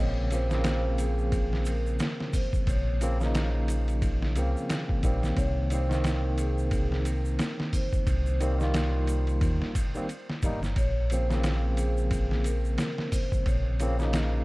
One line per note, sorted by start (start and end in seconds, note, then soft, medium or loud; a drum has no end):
0.00 1.97 A#1 medium
0.00 0.28 C#3 medium
0.00 0.28 F3 medium
0.00 0.29 A#3 medium
0.00 0.29 C4 medium
0.00 0.33 C#5 loud
0.31 0.46 C#3 medium
0.31 0.47 F3 medium
0.31 0.47 A#3 medium
0.31 0.48 C4 medium
0.31 1.02 C5 loud
0.31 ride medium
0.31 shaker medium
0.49 2.97 C#3 medium
0.49 2.98 F3 medium
0.49 2.99 A#3 medium
0.49 snare soft
0.49 shaker soft
0.54 3.00 C4 loud
0.64 snare loud
0.64 ride medium
0.64 shaker soft
0.98 1.63 G#4 medium
0.98 ride medium
0.98 shaker medium
1.18 shaker soft
1.32 kick loud
1.32 ride medium
1.32 shaker soft
1.53 snare soft
1.65 2.37 A#4 medium
1.65 ride medium
1.65 shaker medium
1.87 shaker soft
1.99 snare loud
1.99 ride medium
1.99 shaker medium
2.20 snare soft
2.33 2.69 C5 medium
2.33 kick medium
2.33 open hi-hat medium
2.33 shaker medium
2.53 kick medium
2.53 shaker soft
2.67 4.37 A#1 medium
2.67 3.32 C#5 medium
2.67 kick medium
2.67 ride medium
2.67 shaker soft
3.01 3.16 C#3 medium
3.01 3.17 F3 medium
3.01 3.17 A#3 medium
3.01 3.17 C4 loud
3.01 ride medium
3.01 shaker medium
3.20 4.32 C#3 medium
3.20 4.33 F3 medium
3.20 4.34 A#3 medium
3.20 snare soft
3.20 shaker soft
3.25 4.35 D#4 loud
3.35 snare loud
3.35 ride medium
3.35 shaker medium
3.68 ride medium
3.68 shaker medium
3.88 ride soft
3.88 shaker soft
4.02 kick loud
4.02 ride medium
4.02 shaker soft
4.22 snare soft
4.36 4.54 C2 medium
4.36 5.00 C#3 medium
4.36 5.01 F3 medium
4.36 5.01 A#3 medium
4.36 5.02 C4 medium
4.36 ride medium
4.36 shaker medium
4.57 shaker soft
4.69 snare loud
4.69 ride medium
4.69 shaker medium
4.89 kick medium
5.03 5.34 A#1 medium
5.03 5.68 D#3 medium
5.03 5.68 G3 medium
5.03 5.68 A#3 medium
5.03 5.69 C4 medium
5.03 kick medium
5.03 ride medium
5.03 shaker medium
5.23 snare soft
5.23 shaker soft
5.37 7.37 C2 medium
5.37 5.72 C#5 loud
5.37 kick medium
5.37 ride medium
5.37 shaker soft
5.70 5.86 D#3 medium
5.70 5.87 G3 medium
5.70 5.87 A#3 medium
5.70 5.88 C4 medium
5.70 6.41 C5 loud
5.70 ride medium
5.70 shaker medium
5.89 8.36 D#3 medium
5.89 8.38 A#3 medium
5.89 snare soft
5.89 shaker soft
5.94 8.39 C4 loud
6.04 snare loud
6.04 ride medium
6.04 shaker medium
6.38 7.02 G#4 medium
6.38 ride medium
6.38 shaker medium
6.58 shaker soft
6.71 kick loud
6.71 ride medium
6.71 shaker soft
6.92 snare soft
7.05 7.76 A#4 medium
7.05 ride medium
7.05 shaker medium
7.25 shaker soft
7.39 snare loud
7.39 ride medium
7.39 shaker medium
7.60 snare soft
7.73 8.09 C5 medium
7.73 kick medium
7.73 open hi-hat medium
7.73 shaker medium
7.93 kick medium
7.93 shaker soft
8.07 9.41 C2 medium
8.07 8.72 C5 medium
8.07 kick medium
8.07 ride medium
8.07 shaker soft
8.26 shaker soft
8.40 8.55 D#3 medium
8.40 8.56 G3 medium
8.40 8.56 A#3 medium
8.40 8.57 C4 loud
8.40 ride medium
8.40 shaker medium
8.58 9.71 D#3 medium
8.58 9.72 G3 medium
8.58 9.73 A#3 medium
8.58 snare soft
8.58 shaker soft
8.64 9.74 F4 loud
8.74 snare loud
8.74 ride medium
8.74 shaker soft
9.07 ride medium
9.07 shaker medium
9.27 ride soft
9.27 shaker soft
9.41 9.59 D#2 medium
9.41 kick loud
9.41 ride medium
9.41 shaker soft
9.62 snare soft
9.75 kick medium
9.75 ride medium
9.75 shaker medium
9.95 10.06 D#3 medium
9.95 10.07 G3 medium
9.95 10.07 A#3 medium
9.95 10.08 C4 medium
9.95 shaker soft
10.09 ride medium
10.09 shaker soft
10.30 snare soft
10.43 10.73 G1 medium
10.43 10.59 D#3 medium
10.43 10.60 G3 medium
10.43 10.60 A#3 medium
10.43 10.61 D#4 loud
10.43 kick medium
10.43 ride medium
10.43 shaker medium
10.63 snare soft
10.63 shaker soft
10.76 12.76 A#1 medium
10.76 11.12 C#5 loud
10.76 kick medium
10.76 ride medium
10.76 shaker soft
11.10 11.26 C#3 medium
11.10 11.26 F3 medium
11.10 11.27 A#3 medium
11.10 11.74 C5 loud
11.10 ride medium
11.10 shaker medium
11.14 11.27 C4 medium
11.30 13.76 C#3 medium
11.30 13.77 F3 medium
11.30 13.78 A#3 medium
11.30 snare soft
11.30 shaker soft
11.35 13.79 C4 loud
11.44 snare loud
11.44 ride medium
11.44 shaker medium
11.77 12.47 G#4 medium
11.77 ride medium
11.77 shaker medium
11.98 shaker soft
12.11 kick medium
12.11 ride medium
12.11 shaker medium
12.31 snare soft
12.44 13.15 A#4 medium
12.44 ride medium
12.44 shaker medium
12.65 shaker soft
12.78 snare loud
12.78 ride medium
12.78 shaker medium
12.98 snare soft
13.12 13.47 C5 medium
13.12 kick medium
13.12 open hi-hat medium
13.12 shaker medium
13.32 kick medium
13.32 shaker soft
13.46 14.44 A#1 medium
13.46 14.10 C#5 medium
13.46 kick medium
13.46 ride medium
13.46 shaker soft
13.80 13.95 C#3 loud
13.80 13.96 F3 medium
13.80 13.96 A#3 medium
13.80 13.96 C4 loud
13.80 ride medium
13.80 shaker medium
13.99 14.44 C#3 medium
13.99 14.44 F3 medium
13.99 14.44 A#3 medium
13.99 snare soft
13.99 shaker soft
14.04 14.44 D#4 medium
14.13 snare loud
14.13 ride medium
14.13 shaker soft